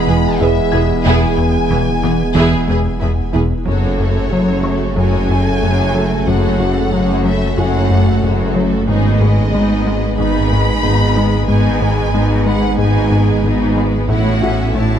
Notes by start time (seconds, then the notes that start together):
Already playing: E1 E3 G#3 B3 E4 G#4 B4 B5
0.07 E1 E2 G#3 B3 G#4 B4
0.39 E1 E2 B3 E4 G#4 B4 E5
0.72 E1 E2 B3 E4 G#4 B4 G#6
1.05 E1 E2 E3 B3 E4 G#4 G#5
1.38 E2
1.70 E1 E2 E3 B3 G#4 B4 E5
2.03 E1 E2 E3 B3 G#4 B4
2.35 E1 E2 E3 B3 E4 G#4 E6
2.67 E1 E2 G#3 B3 G#4 B4
3.00 E1 E2 B3 E4 G#4 B4 E5
3.33 E1 E2 B3 E4 G#4 B4
3.66 F#1 F#2 C#3 F#3 A3 C#4 F#4 A4 C#5
3.97 F#2 A3 F#4 A4
4.30 F#1 F#2 F#3 C#4 F#4 A4 C#5
4.64 F#3 A3 C#4 F#4 A4 C#5 C#6
4.96 F#1 F#2 F#3 F#4 A4 C#5 G#5
5.30 F#2 A3 F#4 A4
5.62 F#1 F#2 F#3 A3 F#4 A4 C#5
5.95 F#3 A3 C#4 F#4 A4
6.27 F#1 F#2 F#3 F#4 A4 C#5 F#5
6.60 F#2 A3 F#4 A4
6.91 F#1 F#2 F#3 C#4 F#4 A4 C#5
7.25 F#3 A3 C#4 F#4 A4 E5
7.57 F#1 F#2 F#3 F#4 A4 C#5 F#5 G#5
7.90 F#2 A3 F#4 A4
8.22 F#1 F#2 F#3 A3 F#4 A4 C#5
8.54 F#3 A3 C#4 F#4 A4
8.87 G#1 G#2 G#3 B3 D#4 G#4 B4 D#5
9.19 G#2 G#3 B3 G#4 B4
9.53 G#1 G#2 G#3 B3 D#4 G#4 B4
9.86 G#3 B3 D#4 G#4 B4
10.17 G#1 G#2 G#3 B3 D#4 G#4 B4 B5
10.51 G#2 G#3 B3 G#4 B4
10.83 G#1 G#2 B3 D#4 G#4 B4
11.16 G#3 B3 D#4 G#4 B4
11.48 G#1 G#2 G#3 B3 D#4 G#4 B4 G#5
11.80 G#2 G#3 B3 G#4 B4
12.12 G#1 G#2 G#3 B3 D#4 G#4 B4
12.46 G#3 B3 D#4 G#4 B4 F#5 B5
12.78 G#1 G#2 G#3 B3 D#4 G#4 B4 G#5
13.10 G#2 G#3 B3 G#4 B4
13.43 G#1 G#2 B3 D#4 G#4 B4
13.76 G#3 B3 D#4 G#4 B4
14.09 A1 A2 E3 A3 C#4 E4 F#4 A4 C#5 F#5
14.41 A2 C#4 E4 F#4 A4 E5 F#5
14.75 A1 A2 A3 E4 F#4 C#5 A5